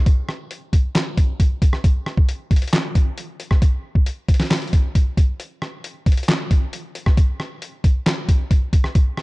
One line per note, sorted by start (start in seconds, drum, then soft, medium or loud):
0.06 kick loud
0.06 closed hi-hat medium
0.29 cross-stick medium
0.51 closed hi-hat medium
0.73 kick medium
0.73 closed hi-hat medium
0.95 snare loud
0.95 clap loud
0.95 closed hi-hat medium
1.17 kick loud
1.17 closed hi-hat medium
1.40 kick loud
1.40 closed hi-hat medium
1.62 kick loud
1.62 closed hi-hat medium
1.73 cross-stick medium
1.84 kick loud
1.84 closed hi-hat medium
2.06 cross-stick medium
2.17 kick loud
2.29 closed hi-hat medium
2.51 kick loud
2.51 closed hi-hat medium
2.56 closed hi-hat medium
2.62 closed hi-hat medium
2.68 closed hi-hat medium
2.73 snare loud
2.73 clap loud
2.73 closed hi-hat medium
2.95 kick loud
2.95 closed hi-hat medium
3.18 closed hi-hat medium
3.40 closed hi-hat medium
3.51 kick loud
3.51 cross-stick medium
3.62 kick loud
3.62 closed hi-hat medium
3.95 kick loud
4.06 closed hi-hat medium
4.28 kick medium
4.28 closed hi-hat medium
4.34 closed hi-hat medium
4.40 snare medium
4.40 closed hi-hat medium
4.45 closed hi-hat soft
4.51 snare loud
4.51 clap loud
4.51 closed hi-hat medium
4.56 closed hi-hat medium
4.62 closed hi-hat medium
4.67 closed hi-hat soft
4.73 kick loud
4.73 closed hi-hat medium
4.95 kick medium
4.95 closed hi-hat medium
5.17 kick loud
5.17 closed hi-hat medium
5.40 closed hi-hat medium
5.62 cross-stick medium
5.84 closed hi-hat medium
6.06 kick medium
6.06 closed hi-hat medium
6.12 closed hi-hat medium
6.17 closed hi-hat medium
6.23 closed hi-hat medium
6.29 snare loud
6.29 clap loud
6.29 closed hi-hat medium
6.51 kick loud
6.51 closed hi-hat medium
6.73 closed hi-hat medium
6.95 closed hi-hat medium
7.06 kick loud
7.06 cross-stick medium
7.17 kick loud
7.17 closed hi-hat medium
7.40 cross-stick medium
7.62 closed hi-hat medium
7.84 kick loud
7.84 closed hi-hat medium
8.06 snare loud
8.06 clap loud
8.06 closed hi-hat medium
8.29 kick loud
8.29 closed hi-hat medium
8.51 kick medium
8.51 closed hi-hat medium
8.73 kick loud
8.73 closed hi-hat medium
8.84 cross-stick medium
8.95 kick loud
8.95 closed hi-hat medium
9.17 cross-stick medium